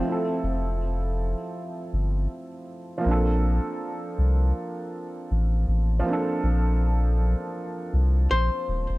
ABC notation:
X:1
M:4/4
L:1/16
Q:"Swing 16ths" 1/4=80
K:Bblyd
V:1 name="Hollow-body jazz guitar"
C12- C2 z2 | z16 | z12 c4 |]
V:2 name="Upright piano"
[F,A,CEA]16 | [F,B,CDA]16 | [F,B,CDA]16 |]
V:3 name="Sub bass" clef=bass
z2 F,,,4- F,,, z3 G,,,2 z4 | B,,,3 z3 C,,2 z4 A,,,2 A,,,2 | z2 B,,,4- B,,, z3 C,,2 B,,, z _E,,, =E,,, |]